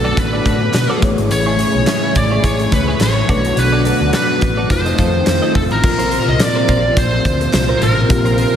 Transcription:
Already playing: B1 B2 D3 F#3 A3 B3 D4 F#4 B4
0.04 F#4 A4 D5
0.17 A1 B4, kick, closed hi-hat
0.33 F#4 A4 D5
0.46 A2 F#4 A4 D5, kick, closed hi-hat
0.62 muted clean electric guitar stroke
0.74 B2, muted clean electric guitar stroke, snare, clap, closed hi-hat
0.90 F#4 A4 D5
1.01 A1 A2 C#3 E3 A3 E4 G#4 C#5, muted clean electric guitar stroke, kick, closed hi-hat
1.18 G#1, muted clean electric guitar stroke, closed hi-hat
1.31 A1 C#5, muted clean electric guitar stroke, closed hi-hat
1.46 E4 G#4 C#5
1.59 E4 G#4 C#5, closed hi-hat
1.74 B1, muted clean electric guitar stroke
1.87 E4 G#4 C#5, snare, clap, closed hi-hat
2.03 muted clean electric guitar stroke
2.15 A1 D5, muted clean electric guitar stroke, kick, closed hi-hat
2.31 E4 G#4 C#5
2.44 A1 E4 G#4 C#5, kick, closed hi-hat
2.59 muted clean electric guitar stroke, closed hi-hat
2.72 C#2 B4, muted clean electric guitar stroke, kick, closed hi-hat
2.88 E4 G#4 C#5
3.00 A1 C#5, muted clean electric guitar stroke, snare, clap, closed hi-hat
3.16 muted clean electric guitar stroke
3.28 B1 B2 D3 F#3 A3 B3 D4 F#4 A4 B4 D5, kick, closed hi-hat
3.44 muted clean electric guitar stroke, closed hi-hat
3.57 B1 B4, muted clean electric guitar stroke, closed hi-hat
3.72 F#4 A4 D5
3.85 F#4 A4 D5, closed hi-hat
4.01 D2, muted clean electric guitar stroke
4.13 F#4 A4 B4 D5, snare, clap, closed hi-hat
4.29 muted clean electric guitar stroke
4.41 A1, muted clean electric guitar stroke, kick, clap, closed hi-hat
4.57 F#4 A4 D5
4.69 F1 D#3 F3 A3 C4 D#4 F4 C5, muted clean electric guitar stroke, kick, closed hi-hat
4.86 F4 A4 D#5, closed hi-hat
4.98 F2 F4 A4 D#5, kick, closed hi-hat
5.14 muted clean electric guitar stroke
5.26 F2, muted clean electric guitar stroke, snare, clap, closed hi-hat
5.42 F4 A4 D#5
5.55 F1 A4, muted clean electric guitar stroke, kick, open hi-hat
5.71 A1 A#4, muted clean electric guitar stroke, closed hi-hat
5.82 A#1 A#2 C3 F3 C4 F4 A#4, muted clean electric guitar stroke, kick, crash
5.99 F4 A#4 C5, closed hi-hat
6.11 F4 A#4 C5, closed hi-hat
6.27 C2 D#5, muted clean electric guitar stroke
6.40 D5, muted clean electric guitar stroke, snare, clap, closed hi-hat, tambourine
6.55 F4 A#4 C5
6.68 A#1 F4 A#4 C5, kick, closed hi-hat
6.84 muted clean electric guitar stroke
6.97 A#1 C5, muted clean electric guitar stroke, kick, closed hi-hat
7.12 muted clean electric guitar stroke
7.25 D2, kick, closed hi-hat
7.41 muted clean electric guitar stroke, closed hi-hat
7.53 C2, muted clean electric guitar stroke, snare, clap, closed hi-hat, tambourine
7.69 F4 A#4 C5
7.81 A1 F4 A#4 C5, closed hi-hat
7.97 muted clean electric guitar stroke
8.09 A#1 A#2 C4 F4 G4, muted clean electric guitar stroke, kick, closed hi-hat
8.25 F4 A#4 C5, closed hi-hat
8.38 F4 A#4 C5, closed hi-hat

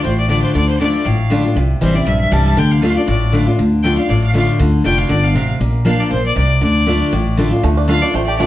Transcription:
0.04 A1 A2 C5
0.18 D5
0.29 D3 A3 D4 F4 D5
0.42 C5
0.55 D2 D3 D5
0.69 C5
0.80 D3 A3 D4 F4 D5
0.95 D5
1.05 A1 A2 F5
1.30 D3 A3 D4 F4
1.44 D4 F4
1.56 C2 C3
1.81 A1 E3 G3 C4 E4 C5
1.94 C4 E4 D5
2.06 A#1 G2 E5
2.21 E5
2.31 C2 E3 G3 C4 E4 A5
2.45 A5
2.57 D2 D3 G5
2.71 F5
2.82 D3 A3 D4 F4 F5
2.96 D4 F4 D5
3.08 A1 A2 D5
3.32 D3 A3 D4 F4
3.46 D4 F4
3.58 D2 D3
3.83 D3 A3 D4 F4 G5
3.97 D4 F4 F5
4.09 A1 A2 D5
4.24 F5
4.34 D3 A3 D4 F4 F5
4.59 D2 D3
4.84 F1 D3 A3 D4 F4 G5
4.98 F5
5.09 G1 D3 D5
5.24 F5
5.35 A1 C3 F5
5.60 A#1 A#2
5.85 F3 A#3 D4 F4 F5
6.00 D5
6.11 A#1 A#2 C5
6.26 D5
6.36 C2 C3 D5
6.61 D2 D3 D5
6.86 D3 A3 D4 F4
7.13 A1 A2
7.37 D3 A3 D4 F4
7.51 D4 F4
7.63 D2 D3 A3
7.77 D4
7.88 D3 A3 D4 F4 F5
8.02 D4 F4 D5
8.14 A1 A2 A3 C5
8.27 G4 D5
8.38 D3 A3 D4 F4 D5

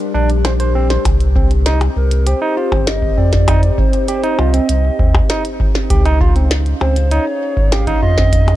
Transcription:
Already playing: G3 D4 G4 A#4
0.14 A#1 D4
0.30 closed hi-hat
0.45 C5, snare, closed hi-hat, percussion blips
0.60 C5, closed hi-hat
0.75 C4
0.90 C5, snare, closed hi-hat
1.05 C2 C4, kick, closed hi-hat, percussion blips
1.21 closed hi-hat
1.34 C4 C5, kick
1.51 closed hi-hat
1.66 D#4, snare, closed hi-hat
1.81 closed hi-hat, percussion blips
1.96 C2 A#4
2.11 closed hi-hat
2.27 G4 C5, closed hi-hat
2.42 D#4
2.57 F4
2.72 G1 C4, kick, percussion blips
2.86 D#4 D#5, snare, closed hi-hat
3.02 kick
3.17 F2 C4 D5
3.33 kick, snare, closed hi-hat
3.48 D#4, kick, closed hi-hat, percussion blips
3.63 closed hi-hat
3.78 C5, kick
3.93 closed hi-hat
4.08 G4 C5, closed hi-hat
4.24 D#4, closed hi-hat
4.39 C2 F4 D#5, percussion blips
4.54 C4, closed hi-hat
4.69 C2, closed hi-hat
4.99 D#2 C4, kick
5.15 kick, percussion blips
5.30 D#4, snare, closed hi-hat
5.45 closed hi-hat
5.60 kick
5.75 snare
5.90 C#2 C#4 G4, kick, closed hi-hat
6.03 D#4 G#4, closed hi-hat, percussion blips
6.21 F4 F5, kick
6.36 C4, closed hi-hat
6.51 snare, closed hi-hat
6.66 closed hi-hat
6.81 C#2 C4 C5, percussion blips
6.96 closed hi-hat
7.11 D#4 C#5, closed hi-hat
7.57 G#1, kick
7.72 G4 F5, snare, closed hi-hat, percussion blips
7.87 D#4, kick, closed hi-hat
8.02 F2 D#5
8.18 C4, kick, snare
8.33 kick, closed hi-hat
8.48 closed hi-hat, percussion blips

